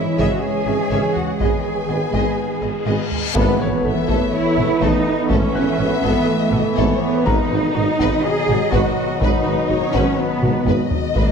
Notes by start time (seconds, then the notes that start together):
Already playing: E3 G#3 C#4 E4 G#4 C#5 D#5 E5
0.19 G#1 C#3 C#4 G#4 D#5 E5, taiko
0.30 F#4 F#5
0.43 G#4 G#5
0.66 G#1 C#4 G#4 E5
0.91 G#1 C#3 C#4 G#4 C#5 E5
1.15 F#4 F#5, taiko low
1.39 G#1 D#3 G#3 B3 G#4 B4 D#5 G#5, taiko, reverse cymbal
1.89 G#1 B3 G#4 D#5
2.13 G#1 G#3 B3 G#4 D#5, taiko
2.62 G#1 B3 G#4 D#5
2.85 G#1 G#3 B3 G#4 D#5
3.11 G#3, taiko low
3.35 G#1 E3 A3 B3 A4 B4, taiko, impact
3.59 G#1 E4 B4 C#5
3.84 G#1 B3 A4 E5
4.08 G#1 A3 A4, taiko
4.33 E4 C#5
4.57 G#1 B3 A4, taiko mid
4.81 G#1 A3 D#4 A4 B4, taiko
5.30 G#1 A3 C#4 A4 E5, taiko
5.55 G#1 E4 B4
5.79 G#1 B3 A4
6.03 G#1 A3 B3 A4, taiko
6.28 A3
6.52 G#1 B3 A4, taiko mid
6.77 G#1 A3 A4 C#5, taiko
7.02 B3
7.26 G#1 B2 D#3 F#3 A#3 B3 D#4 F#4 B4 D#5 A#5, taiko
7.51 G#1 F#4 B4
7.75 G#1 D#4 F#4 D#5
7.99 G#1 B3 B4, taiko
8.24 G#4
8.48 G#1 D#4 F#4, taiko mid
8.72 G#1 B3 F#4 B4, taiko
9.21 G#1 B3 D#4 B4, taiko
9.45 G#1 F#4 B4
9.70 G#1 D#4 F#4 C#5
9.94 G#1 B3 C#4 B4, taiko
10.18 B3 B4
10.42 G#1 D#4 F#4, taiko mid
10.67 G#1 B3 B4 D#5, taiko low-mid
10.91 taiko low
11.15 G#1 B2 D#3 G#3 A#3 G#4 B4 D#5, taiko